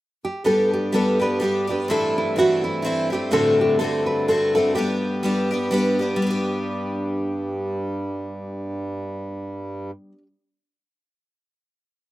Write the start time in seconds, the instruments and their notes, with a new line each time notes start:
0.25 nylon-string guitar G4
0.44 harmonium G2, twelve-string acoustic guitar G3 B3 D4 G4, nylon-string guitar A4
0.73 nylon-string guitar G4
0.92 twelve-string acoustic guitar G3 B3 D4 G4, nylon-string guitar A4
1.19 twelve-string acoustic guitar B3 D4 G4, nylon-string guitar B4
1.40 twelve-string acoustic guitar G3 B3 D4, nylon-string guitar G4
1.44 twelve-string acoustic guitar G4
1.67 twelve-string acoustic guitar B3 D4 G4, nylon-string guitar G4
1.88 twelve-string acoustic guitar A2 E3 A3 C4 E4, nylon-string guitar A4
2.18 nylon-string guitar E4
2.36 twelve-string acoustic guitar E3 A3 C4 E4, nylon-string guitar F#4
2.64 nylon-string guitar E4
2.82 twelve-string acoustic guitar E3 A3 C4, nylon-string guitar E4
2.86 twelve-string acoustic guitar E4
3.10 twelve-string acoustic guitar A3 E4, nylon-string guitar G4
3.14 twelve-string acoustic guitar C4
3.31 twelve-string acoustic guitar D2 A2 D3 A3 C4 F#4, nylon-string guitar A4
3.61 nylon-string guitar G4
3.79 twelve-string acoustic guitar D3 A3 C4, nylon-string guitar A4
3.84 twelve-string acoustic guitar F#4
4.06 nylon-string guitar B4
4.28 twelve-string acoustic guitar D3 A3 C4 F#4, nylon-string guitar A4
4.55 twelve-string acoustic guitar D3 A3 C4 F#4, nylon-string guitar A4
4.75 twelve-string acoustic guitar G3 B3 D4 G4, nylon-string guitar G4
5.23 twelve-string acoustic guitar G3 B3 D4 G4
5.51 twelve-string acoustic guitar B3 D4 G4
5.71 twelve-string acoustic guitar G3 B3 D4 G4
5.99 twelve-string acoustic guitar B3 D4 G4
6.16 twelve-string acoustic guitar G3
6.21 harmonium G2, twelve-string acoustic guitar B3
6.27 twelve-string acoustic guitar D4 G4